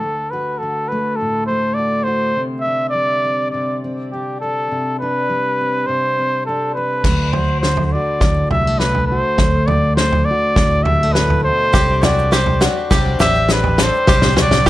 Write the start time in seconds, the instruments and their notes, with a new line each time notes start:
Already playing: steel-string acoustic guitar D3, trumpet A4
0.03 steel-string acoustic guitar D2
0.30 steel-string acoustic guitar F#4, trumpet B4
0.58 trumpet A4
0.63 steel-string acoustic guitar D3
0.88 steel-string acoustic guitar A3, trumpet B4
1.16 trumpet A4
1.21 steel-string acoustic guitar A2
1.46 steel-string acoustic guitar A3, trumpet C5
1.74 trumpet D5
1.79 steel-string acoustic guitar F#4
2.04 steel-string acoustic guitar F#4, trumpet C5
2.36 steel-string acoustic guitar C3
2.61 trumpet E5
2.66 steel-string acoustic guitar D4
2.90 trumpet D5
2.94 steel-string acoustic guitar G3
3.25 steel-string acoustic guitar C4
3.51 steel-string acoustic guitar C3, trumpet D5
3.84 steel-string acoustic guitar C4
4.12 steel-string acoustic guitar D4, trumpet G4
4.41 steel-string acoustic guitar D4, trumpet A4
4.71 steel-string acoustic guitar C3
5.00 steel-string acoustic guitar D4, trumpet B4
5.29 steel-string acoustic guitar G3
5.61 steel-string acoustic guitar C4
5.86 steel-string acoustic guitar C3, trumpet C5
6.19 steel-string acoustic guitar C4
6.46 steel-string acoustic guitar D4, trumpet A4
6.75 steel-string acoustic guitar D4, trumpet B4
7.04 fingered electric bass D2, steel-string acoustic guitar D2 A3, kick, snare, floor tom, crash
7.33 steel-string acoustic guitar F#4, trumpet C5, floor tom
7.61 steel-string acoustic guitar D3, trumpet C5, snare
7.77 floor tom
7.86 trumpet C5
7.92 steel-string acoustic guitar F#4, trumpet D5
8.21 fingered electric bass D2, steel-string acoustic guitar A2, kick, snare, floor tom
8.51 fingered electric bass C2, steel-string acoustic guitar G3, trumpet E5, floor tom
8.67 steel-string acoustic guitar A3
8.79 steel-string acoustic guitar D3, trumpet B4, snare
8.95 floor tom
9.07 trumpet C5
9.12 steel-string acoustic guitar F#4
9.38 fingered electric bass D2, steel-string acoustic guitar D2 A3, kick, snare, floor tom
9.67 trumpet D5, floor tom
9.71 steel-string acoustic guitar F#4
9.96 steel-string acoustic guitar D3, trumpet C5, snare
10.12 floor tom
10.25 trumpet D5
10.31 steel-string acoustic guitar F#4
10.56 fingered electric bass D2, steel-string acoustic guitar A2, kick, snare, floor tom
10.84 steel-string acoustic guitar G3, trumpet E5, floor tom
11.03 steel-string acoustic guitar A3
11.13 steel-string acoustic guitar A2, trumpet B4, snare
11.30 floor tom
11.44 steel-string acoustic guitar B2, trumpet C5
11.73 fingered electric bass C2, twelve-string acoustic guitar C3 G3 C4 D4 G4, five-string banjo G4, kick, snare, floor tom, shaker
12.02 twelve-string acoustic guitar C4 D4 G4, five-string banjo F#4, trumpet D5, snare, floor tom, shaker
12.19 shaker
12.31 twelve-string acoustic guitar G3 C4 D4 G4, five-string banjo G4, trumpet C5, snare, shaker
12.46 floor tom
12.60 twelve-string acoustic guitar C4 D4 G4, five-string banjo F#4, snare, shaker
12.91 fingered electric bass C2, twelve-string acoustic guitar C3 G3 C4 D4 G4, five-string banjo G4, kick, snare, floor tom, shaker
13.20 fingered electric bass A1, twelve-string acoustic guitar C4 D4 G4, five-string banjo G4, trumpet E5, snare, floor tom, shaker
13.35 shaker
13.49 twelve-string acoustic guitar G3 C4 D4 G4, trumpet B4, snare, shaker
13.64 floor tom
13.78 twelve-string acoustic guitar C4 D4 G4, five-string banjo A4, snare, shaker
13.83 trumpet C5
13.94 shaker
14.07 fingered electric bass C2, twelve-string acoustic guitar C3 G3 C4 D4 G4, five-string banjo G4, kick, snare, floor tom, shaker
14.22 snare, mid tom
14.36 twelve-string acoustic guitar C4 D4 G4, five-string banjo F#4, snare, floor tom, shaker
14.41 trumpet D5
14.51 snare, mid tom, shaker
14.65 twelve-string acoustic guitar G3 C4 D4, five-string banjo G4, kick, snare